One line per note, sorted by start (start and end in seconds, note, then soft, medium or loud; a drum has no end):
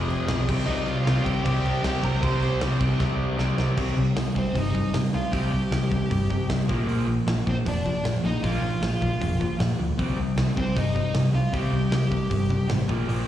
0.00 0.16 F1 medium
0.00 0.27 F2 medium
0.00 0.28 C3 loud
0.00 0.28 F3 loud
0.00 0.45 G#4 medium
0.00 0.44 G#5 medium
0.10 crash medium
0.28 0.49 B1 medium
0.28 0.47 F2 medium
0.28 0.47 C3 medium
0.28 0.48 F3 medium
0.28 snare loud
0.28 crash medium
0.48 0.62 C2 medium
0.48 0.67 C3 medium
0.48 0.67 G3 medium
0.48 0.68 C4 loud
0.48 kick loud
0.48 crash loud
0.66 0.80 C2 medium
0.66 1.05 C3 loud
0.66 1.06 G3 loud
0.66 1.06 C4 loud
0.66 0.86 D#4 medium
0.66 0.86 D#5 medium
0.66 crash medium
0.86 1.00 C2 medium
0.86 1.06 F4 medium
0.86 1.03 F5 medium
0.86 crash medium
1.04 1.19 C2 medium
1.04 1.24 C3 medium
1.04 1.25 G3 medium
1.04 1.26 C4 medium
1.04 1.25 F4 medium
1.04 1.25 F5 medium
1.04 snare loud
1.04 crash medium
1.25 1.39 C2 medium
1.25 1.44 C3 medium
1.25 1.44 G3 medium
1.25 1.45 C4 medium
1.25 1.45 G4 medium
1.25 1.44 G5 medium
1.25 kick medium
1.25 crash medium
1.44 1.59 C2 medium
1.44 1.83 C3 loud
1.44 1.83 G3 medium
1.44 1.84 C4 loud
1.44 1.82 G4 medium
1.44 1.84 G5 loud
1.44 kick loud
1.44 crash medium
1.65 1.78 C2 medium
1.65 crash medium
1.83 1.97 C2 medium
1.83 2.02 C3 medium
1.83 2.02 G3 medium
1.83 2.03 C4 medium
1.83 2.04 G4 medium
1.83 2.02 G5 medium
1.83 snare loud
1.83 crash medium
2.02 2.16 C2 medium
2.02 2.20 C3 medium
2.02 2.21 G3 medium
2.02 2.21 C4 medium
2.02 2.23 A#4 medium
2.02 2.22 A#5 medium
2.02 kick medium
2.02 crash medium
2.21 2.48 C2 loud
2.21 2.59 C3 medium
2.21 2.60 G3 medium
2.21 2.60 C4 loud
2.21 2.59 C5 medium
2.21 2.58 C6 loud
2.21 kick loud
2.21 crash medium
2.42 crash medium
2.60 2.74 C2 loud
2.60 2.78 C3 medium
2.60 2.79 G3 medium
2.60 2.79 C4 medium
2.60 snare loud
2.60 crash medium
2.79 2.94 C2 medium
2.79 2.98 C3 medium
2.79 2.98 G3 medium
2.79 2.99 C4 medium
2.79 kick medium
2.79 crash medium
2.99 3.25 C2 medium
2.99 3.36 C3 medium
2.99 3.36 G3 loud
2.99 3.37 C4 loud
2.99 kick loud
2.99 snare medium
3.37 3.52 C2 medium
3.37 3.56 C3 medium
3.37 3.56 G3 medium
3.37 3.57 C4 medium
3.37 snare medium
3.57 3.71 C2 medium
3.57 3.75 C3 medium
3.57 3.76 G3 medium
3.57 3.77 C4 medium
3.57 snare medium
3.76 3.91 C2 medium
3.76 3.95 C3 medium
3.76 3.95 G3 loud
3.76 3.96 C4 loud
3.76 kick loud
3.76 crash loud
3.96 4.10 C2 medium
3.96 4.14 C3 medium
3.96 4.14 G3 medium
4.16 4.29 C2 medium
4.16 4.34 C3 medium
4.16 4.34 G3 medium
4.16 snare loud
4.16 open hi-hat medium
4.35 4.49 C2 medium
4.35 4.53 C3 medium
4.35 4.53 G3 medium
4.35 4.55 C4 medium
4.35 4.58 C5 medium
4.35 kick medium
4.54 4.81 G1 medium
4.54 4.72 C3 medium
4.54 4.73 G3 medium
4.54 4.92 D#4 medium
4.54 4.95 D#5 medium
4.54 kick loud
4.54 open hi-hat medium
4.74 4.92 C3 medium
4.74 4.92 G3 medium
4.74 kick medium
4.93 5.11 C3 medium
4.93 5.08 C3 medium
4.93 5.11 G3 medium
4.93 snare loud
4.93 open hi-hat medium
5.13 5.27 C2 medium
5.13 5.30 C3 medium
5.13 5.31 G3 medium
5.13 5.32 F4 medium
5.13 5.33 F5 medium
5.32 5.46 C2 medium
5.32 5.51 C3 medium
5.32 5.51 G3 medium
5.32 5.51 C4 loud
5.32 6.46 G4 medium
5.32 6.49 G5 medium
5.32 kick medium
5.32 open hi-hat medium
5.52 5.65 C2 medium
5.52 5.70 C3 medium
5.52 5.70 G3 medium
5.71 5.84 C2 medium
5.71 5.89 C3 medium
5.71 5.89 G3 medium
5.71 snare loud
5.71 open hi-hat medium
5.91 6.04 C2 medium
5.91 6.08 C3 medium
5.91 6.08 G3 medium
5.91 kick medium
6.10 6.37 G1 medium
6.10 6.28 C3 medium
6.10 6.28 G3 medium
6.10 kick loud
6.10 open hi-hat medium
6.30 6.47 C3 medium
6.30 6.47 G3 medium
6.30 kick medium
6.49 6.62 C2 medium
6.49 6.67 C3 medium
6.49 6.67 G3 medium
6.49 snare loud
6.49 open hi-hat medium
6.68 6.82 A#1 medium
6.68 6.86 A#2 medium
6.68 6.87 F3 medium
6.68 6.87 A#3 loud
6.68 kick medium
6.87 7.00 A#1 loud
6.87 7.06 A#2 loud
6.87 7.06 F3 medium
6.87 7.06 A#3 loud
6.87 open hi-hat medium
7.07 7.20 A#1 medium
7.07 7.25 A#2 medium
7.07 7.25 F3 medium
7.27 7.40 A#1 loud
7.27 7.44 A#2 medium
7.27 7.44 F3 medium
7.27 snare loud
7.27 open hi-hat medium
7.46 7.60 A#1 medium
7.46 7.64 A#2 medium
7.46 7.64 F3 medium
7.46 7.54 C4 medium
7.46 kick medium
7.51 7.56 C5 medium
7.66 7.92 F1 medium
7.66 7.83 A#2 medium
7.66 7.83 F3 medium
7.66 8.03 D4 medium
7.66 8.04 D5 medium
7.66 kick loud
7.66 open hi-hat medium
7.85 8.03 A#2 medium
7.85 8.03 F3 medium
7.85 kick medium
8.04 8.17 A#2 medium
8.04 8.22 A#2 medium
8.04 8.22 F3 medium
8.04 snare loud
8.04 open hi-hat medium
8.24 8.37 A#1 medium
8.24 8.41 A#2 medium
8.24 8.41 F3 medium
8.24 8.43 D#4 medium
8.24 8.44 D#5 medium
8.43 8.57 A#1 medium
8.43 8.61 A#2 medium
8.43 8.61 F3 medium
8.43 8.62 A#3 loud
8.43 9.56 F4 medium
8.43 9.60 F5 medium
8.43 kick loud
8.43 open hi-hat medium
8.62 8.75 A#1 medium
8.62 8.80 A#2 medium
8.62 8.80 F3 medium
8.81 8.95 A#1 loud
8.81 8.99 A#2 medium
8.81 8.99 F3 medium
8.81 snare loud
8.81 open hi-hat medium
9.01 9.15 A#1 medium
9.01 9.19 A#2 medium
9.01 9.19 F3 medium
9.01 kick medium
9.21 9.47 F1 medium
9.21 9.38 A#2 medium
9.21 9.38 F3 medium
9.21 kick loud
9.21 open hi-hat medium
9.40 9.58 A#2 medium
9.40 9.58 F3 medium
9.40 kick medium
9.59 9.77 A#2 medium
9.59 9.73 A#2 medium
9.59 9.77 F3 medium
9.59 snare loud
9.59 open hi-hat medium
9.79 9.92 D2 medium
9.79 9.97 A#2 medium
9.79 9.97 F3 medium
9.98 10.12 C2 loud
9.98 10.16 C3 loud
9.98 10.17 G3 medium
9.98 10.17 C4 medium
9.98 kick medium
9.98 open hi-hat soft
10.18 10.31 C2 medium
10.18 10.35 C3 medium
10.18 10.35 G3 medium
10.36 10.50 C2 loud
10.36 10.54 C3 medium
10.36 10.54 G3 medium
10.36 snare loud
10.36 open hi-hat medium
10.56 10.70 C2 medium
10.56 10.74 C3 medium
10.56 10.74 G3 medium
10.56 10.75 C4 medium
10.56 10.78 C5 medium
10.56 kick medium
10.75 11.02 G1 medium
10.75 10.93 C3 medium
10.75 10.93 G3 medium
10.75 11.13 D#4 medium
10.75 11.13 D#5 medium
10.75 kick loud
10.75 open hi-hat medium
10.95 11.12 C3 medium
10.95 11.13 G3 medium
10.95 kick medium
11.14 11.32 C3 medium
11.14 11.28 C3 medium
11.14 11.32 G3 medium
11.14 snare loud
11.14 open hi-hat medium
11.33 11.46 C2 medium
11.33 11.51 C3 medium
11.33 11.51 G3 medium
11.33 11.52 F4 medium
11.33 11.55 F5 medium
11.52 11.66 C2 medium
11.52 11.71 C3 medium
11.52 11.72 G3 medium
11.52 11.72 C4 loud
11.52 12.66 G4 medium
11.52 12.70 G5 medium
11.52 kick loud
11.52 open hi-hat medium
11.72 11.85 C2 medium
11.72 11.90 C3 medium
11.72 11.90 G3 medium
11.91 12.05 C2 medium
11.91 12.09 C3 medium
11.91 12.10 G3 medium
11.91 snare loud
11.91 open hi-hat medium
12.11 12.25 C2 medium
12.11 12.29 C3 medium
12.11 12.29 G3 medium
12.11 kick medium
12.30 12.57 G1 medium
12.30 12.48 C3 medium
12.30 12.48 G3 medium
12.30 kick loud
12.30 open hi-hat medium
12.50 12.67 C3 medium
12.50 12.67 G3 medium
12.50 kick medium
12.68 12.83 A1 medium
12.68 12.86 C3 medium
12.68 12.87 G3 medium
12.68 snare loud
12.68 open hi-hat medium
12.88 13.02 A#1 medium
12.88 13.06 A#2 medium
12.88 13.07 F3 medium
12.88 13.07 A#3 medium
12.88 kick loud
13.07 13.21 A#1 loud
13.07 13.26 A#2 medium
13.07 13.26 F3 medium
13.07 13.27 A#3 loud
13.07 open hi-hat medium